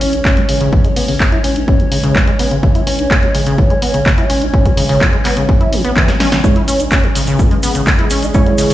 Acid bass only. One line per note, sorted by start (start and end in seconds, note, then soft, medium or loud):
0.01 0.15 C#4 medium
0.13 0.17 E4 medium
0.25 0.38 C#4 medium
0.37 0.41 C#3 loud
0.49 0.55 C#3 medium
0.61 0.74 C#3 loud
0.73 0.79 F#3 medium
0.85 0.88 G#3 medium
0.96 1.06 B3 medium
1.08 1.15 C#3 medium
1.20 1.24 C#3 medium
1.32 1.39 E4 medium
1.44 1.57 C#4 medium
1.56 1.60 E4 medium
1.68 1.81 C#4 medium
1.80 1.84 C#3 loud
1.92 1.98 C#3 medium
2.04 2.17 C#3 loud
2.16 2.22 F#3 medium
2.27 2.31 G#3 medium
2.39 2.49 B3 medium
2.51 2.58 C#3 medium
2.63 2.67 C#3 medium
2.75 2.82 E4 medium
2.87 3.00 C#4 medium
2.99 3.03 E4 medium
3.11 3.24 C#4 medium
3.23 3.27 C#3 loud
3.35 3.41 C#3 medium
3.46 3.60 C#3 loud
3.58 3.65 F#3 medium
3.70 3.74 G#3 medium
3.82 3.92 B3 medium
3.94 4.01 C#3 medium
4.06 4.10 C#3 medium
4.18 4.24 E4 medium
4.30 4.43 C#4 medium
4.42 4.46 E4 medium
4.54 4.67 C#4 medium
4.65 4.69 C#3 loud
4.77 4.84 C#3 medium
4.89 5.03 C#3 loud
5.01 5.08 F#3 medium
5.13 5.17 G#3 medium
5.25 5.35 B3 medium
5.37 5.43 C#3 medium
5.49 5.53 C#3 medium
5.61 5.74 E4 medium
5.73 5.82 E3 medium
5.85 5.91 B3 loud
5.96 6.10 E3 loud
6.08 6.15 C#4 medium
6.20 6.30 C#4 loud
6.32 6.36 C#3 medium
6.44 6.48 C#3 medium
6.56 6.63 E4 medium
6.68 6.81 C#4 medium
6.80 6.84 E4 medium
6.92 7.05 C#4 medium
7.04 7.08 C#3 loud
7.15 7.22 C#3 medium
7.27 7.41 C#3 loud
7.39 7.46 F#3 medium
7.51 7.55 G#3 medium
7.63 7.73 B3 medium
7.75 7.82 C#3 medium
7.87 7.91 C#3 medium
7.99 8.05 E4 medium
8.11 8.24 C#4 medium
8.23 8.27 E4 medium
8.34 8.48 C#4 medium
8.46 8.50 C#3 loud
8.58 8.65 C#3 medium
8.70 8.74 C#3 loud